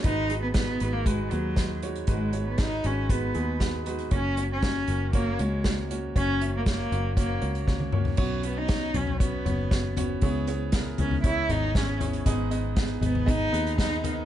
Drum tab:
CC |----------------|----------------|----------------|----------------|
HH |x-x-x-x-x-x-x-xx|x-x-x-x-x-x-x-xx|x-x-x-x-x-x-x-x-|x-x-x-x-x-xx----|
SD |----o-------o---|----o-------o---|----o-------o---|----o-------o---|
T1 |----------------|----------------|----------------|-------------o--|
T2 |----------------|----------------|----------------|--------------o-|
FT |----------------|----------------|----------------|---------------o|
BD |o---o---o---o---|o---o---o---o---|o---o---o---o---|o---o---o---o---|

CC |x---------------|----------------|----------------|
HH |--x-x-x-x-x-x-x-|x-x-x-x-x-x-x-xx|x-x-x-x-x-xxx-x-|
SD |----o-------o---|----o-------o---|----o-------o---|
T1 |----------------|----------------|----------------|
T2 |----------------|----------------|----------------|
FT |------oo--o---o-|------oo--o---o-|------oo------o-|
BD |o---o---o---o---|o---o---o---o---|o---o---o---o---|